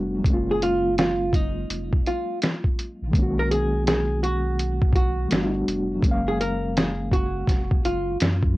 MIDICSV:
0, 0, Header, 1, 5, 480
1, 0, Start_track
1, 0, Tempo, 722892
1, 161, Time_signature, 4, 2, 24, 8
1, 5691, End_track
2, 0, Start_track
2, 0, Title_t, "Hollow-body jazz guitar"
2, 0, Program_c, 0, 26
2, 339, Note_on_c, 0, 68, 65
2, 404, Note_off_c, 0, 68, 0
2, 418, Note_on_c, 0, 65, 87
2, 626, Note_off_c, 0, 65, 0
2, 658, Note_on_c, 0, 65, 75
2, 897, Note_off_c, 0, 65, 0
2, 897, Note_on_c, 0, 63, 74
2, 1343, Note_off_c, 0, 63, 0
2, 1377, Note_on_c, 0, 65, 73
2, 1586, Note_off_c, 0, 65, 0
2, 2253, Note_on_c, 0, 70, 73
2, 2321, Note_off_c, 0, 70, 0
2, 2332, Note_on_c, 0, 68, 78
2, 2543, Note_off_c, 0, 68, 0
2, 2574, Note_on_c, 0, 68, 72
2, 2784, Note_off_c, 0, 68, 0
2, 2810, Note_on_c, 0, 66, 81
2, 3259, Note_off_c, 0, 66, 0
2, 3290, Note_on_c, 0, 66, 74
2, 3660, Note_off_c, 0, 66, 0
2, 4169, Note_on_c, 0, 68, 65
2, 4239, Note_off_c, 0, 68, 0
2, 4253, Note_on_c, 0, 70, 87
2, 4493, Note_off_c, 0, 70, 0
2, 4493, Note_on_c, 0, 68, 82
2, 4704, Note_off_c, 0, 68, 0
2, 4733, Note_on_c, 0, 66, 77
2, 5180, Note_off_c, 0, 66, 0
2, 5213, Note_on_c, 0, 65, 74
2, 5424, Note_off_c, 0, 65, 0
2, 5691, End_track
3, 0, Start_track
3, 0, Title_t, "Reed electric piano"
3, 0, Program_c, 1, 4
3, 0, Control_c, 1, 64, 127
3, 0, Note_on_c, 1, 55, 66
3, 0, Note_on_c, 1, 57, 59
3, 0, Note_on_c, 1, 59, 57
3, 0, Note_on_c, 1, 62, 55
3, 0, Note_on_c, 1, 66, 68
3, 126, Note_on_c, 1, 54, 64
3, 149, Note_on_c, 1, 56, 58
3, 153, Note_off_c, 1, 55, 0
3, 160, Note_off_c, 1, 57, 0
3, 170, Control_c, 1, 64, 0
3, 171, Note_off_c, 1, 62, 0
3, 175, Note_on_c, 1, 57, 47
3, 177, Note_off_c, 1, 66, 0
3, 187, Note_off_c, 1, 59, 0
3, 199, Note_on_c, 1, 61, 58
3, 216, Note_on_c, 1, 58, 58
3, 222, Note_on_c, 1, 65, 73
3, 224, Note_off_c, 1, 57, 0
3, 291, Control_c, 1, 64, 127
3, 2037, Note_off_c, 1, 54, 0
3, 2042, Note_on_c, 1, 51, 64
3, 2049, Note_off_c, 1, 56, 0
3, 2067, Note_on_c, 1, 56, 60
3, 2073, Note_off_c, 1, 61, 0
3, 2082, Note_off_c, 1, 58, 0
3, 2085, Note_off_c, 1, 65, 0
3, 2090, Control_c, 1, 64, 0
3, 2092, Note_on_c, 1, 58, 59
3, 2116, Note_on_c, 1, 61, 58
3, 2140, Note_on_c, 1, 66, 73
3, 2187, Control_c, 1, 64, 127
3, 3475, Note_off_c, 1, 51, 0
3, 3487, Note_off_c, 1, 56, 0
3, 3500, Note_off_c, 1, 58, 0
3, 3507, Note_on_c, 1, 55, 66
3, 3512, Note_off_c, 1, 61, 0
3, 3519, Note_on_c, 1, 57, 58
3, 3524, Note_off_c, 1, 66, 0
3, 3529, Control_c, 1, 64, 0
3, 3529, Note_on_c, 1, 59, 55
3, 3543, Note_on_c, 1, 62, 58
3, 3555, Note_on_c, 1, 66, 69
3, 3640, Control_c, 1, 64, 127
3, 3962, Note_on_c, 1, 54, 61
3, 3988, Note_on_c, 1, 56, 59
3, 3994, Note_off_c, 1, 55, 0
3, 4000, Note_off_c, 1, 57, 0
3, 4005, Note_off_c, 1, 59, 0
3, 4010, Control_c, 1, 64, 0
3, 4012, Note_off_c, 1, 62, 0
3, 4012, Note_on_c, 1, 58, 61
3, 4018, Note_off_c, 1, 66, 0
3, 4036, Note_on_c, 1, 61, 63
3, 4059, Note_on_c, 1, 77, 75
3, 4120, Control_c, 1, 64, 127
3, 5635, Note_off_c, 1, 54, 0
3, 5648, Note_off_c, 1, 56, 0
3, 5660, Note_off_c, 1, 58, 0
3, 5667, Note_on_c, 1, 54, 53
3, 5672, Note_off_c, 1, 61, 0
3, 5684, Note_off_c, 1, 77, 0
3, 5691, Note_off_c, 1, 54, 0
3, 5691, End_track
4, 0, Start_track
4, 0, Title_t, "Sub bass"
4, 0, Program_c, 2, 38
4, 0, Note_on_c, 2, 29, 93
4, 141, Note_off_c, 2, 29, 0
4, 166, Note_on_c, 2, 30, 106
4, 1097, Note_off_c, 2, 30, 0
4, 1126, Note_on_c, 2, 29, 97
4, 1339, Note_off_c, 2, 29, 0
4, 2004, Note_on_c, 2, 34, 90
4, 2076, Note_off_c, 2, 34, 0
4, 2084, Note_on_c, 2, 35, 99
4, 3496, Note_off_c, 2, 35, 0
4, 3527, Note_on_c, 2, 31, 107
4, 3740, Note_off_c, 2, 31, 0
4, 3766, Note_on_c, 2, 29, 84
4, 3979, Note_off_c, 2, 29, 0
4, 4004, Note_on_c, 2, 30, 111
4, 4936, Note_off_c, 2, 30, 0
4, 4967, Note_on_c, 2, 29, 94
4, 5180, Note_off_c, 2, 29, 0
4, 5210, Note_on_c, 2, 30, 89
4, 5421, Note_off_c, 2, 30, 0
4, 5452, Note_on_c, 2, 42, 105
4, 5691, Note_off_c, 2, 42, 0
4, 5691, End_track
5, 0, Start_track
5, 0, Title_t, "Drums"
5, 162, Note_on_c, 9, 36, 114
5, 171, Note_on_c, 9, 42, 81
5, 229, Note_off_c, 9, 36, 0
5, 237, Note_off_c, 9, 42, 0
5, 413, Note_on_c, 9, 42, 67
5, 479, Note_off_c, 9, 42, 0
5, 651, Note_on_c, 9, 42, 72
5, 656, Note_on_c, 9, 38, 109
5, 718, Note_off_c, 9, 42, 0
5, 723, Note_off_c, 9, 38, 0
5, 883, Note_on_c, 9, 36, 88
5, 891, Note_on_c, 9, 42, 67
5, 949, Note_off_c, 9, 36, 0
5, 957, Note_off_c, 9, 42, 0
5, 1131, Note_on_c, 9, 42, 76
5, 1198, Note_off_c, 9, 42, 0
5, 1280, Note_on_c, 9, 36, 86
5, 1346, Note_off_c, 9, 36, 0
5, 1371, Note_on_c, 9, 42, 58
5, 1438, Note_off_c, 9, 42, 0
5, 1607, Note_on_c, 9, 42, 88
5, 1617, Note_on_c, 9, 38, 98
5, 1673, Note_off_c, 9, 42, 0
5, 1684, Note_off_c, 9, 38, 0
5, 1755, Note_on_c, 9, 36, 79
5, 1821, Note_off_c, 9, 36, 0
5, 1853, Note_on_c, 9, 42, 58
5, 1919, Note_off_c, 9, 42, 0
5, 2081, Note_on_c, 9, 36, 117
5, 2093, Note_on_c, 9, 42, 76
5, 2148, Note_off_c, 9, 36, 0
5, 2159, Note_off_c, 9, 42, 0
5, 2334, Note_on_c, 9, 42, 61
5, 2401, Note_off_c, 9, 42, 0
5, 2571, Note_on_c, 9, 42, 72
5, 2576, Note_on_c, 9, 38, 107
5, 2637, Note_off_c, 9, 42, 0
5, 2642, Note_off_c, 9, 38, 0
5, 2813, Note_on_c, 9, 42, 70
5, 2880, Note_off_c, 9, 42, 0
5, 3050, Note_on_c, 9, 42, 78
5, 3116, Note_off_c, 9, 42, 0
5, 3199, Note_on_c, 9, 36, 98
5, 3265, Note_off_c, 9, 36, 0
5, 3271, Note_on_c, 9, 36, 94
5, 3291, Note_on_c, 9, 42, 58
5, 3338, Note_off_c, 9, 36, 0
5, 3357, Note_off_c, 9, 42, 0
5, 3524, Note_on_c, 9, 42, 84
5, 3535, Note_on_c, 9, 38, 101
5, 3591, Note_off_c, 9, 42, 0
5, 3601, Note_off_c, 9, 38, 0
5, 3772, Note_on_c, 9, 42, 63
5, 3838, Note_off_c, 9, 42, 0
5, 4001, Note_on_c, 9, 36, 108
5, 4010, Note_on_c, 9, 42, 81
5, 4067, Note_off_c, 9, 36, 0
5, 4076, Note_off_c, 9, 42, 0
5, 4255, Note_on_c, 9, 42, 63
5, 4321, Note_off_c, 9, 42, 0
5, 4493, Note_on_c, 9, 42, 71
5, 4498, Note_on_c, 9, 38, 105
5, 4559, Note_off_c, 9, 42, 0
5, 4564, Note_off_c, 9, 38, 0
5, 4723, Note_on_c, 9, 36, 83
5, 4734, Note_on_c, 9, 42, 62
5, 4790, Note_off_c, 9, 36, 0
5, 4801, Note_off_c, 9, 42, 0
5, 4963, Note_on_c, 9, 36, 92
5, 4973, Note_on_c, 9, 42, 76
5, 4976, Note_on_c, 9, 38, 34
5, 5029, Note_off_c, 9, 36, 0
5, 5039, Note_off_c, 9, 42, 0
5, 5042, Note_off_c, 9, 38, 0
5, 5120, Note_on_c, 9, 36, 95
5, 5186, Note_off_c, 9, 36, 0
5, 5212, Note_on_c, 9, 42, 55
5, 5278, Note_off_c, 9, 42, 0
5, 5447, Note_on_c, 9, 42, 88
5, 5457, Note_on_c, 9, 38, 97
5, 5513, Note_off_c, 9, 42, 0
5, 5523, Note_off_c, 9, 38, 0
5, 5595, Note_on_c, 9, 36, 88
5, 5661, Note_off_c, 9, 36, 0
5, 5691, End_track
0, 0, End_of_file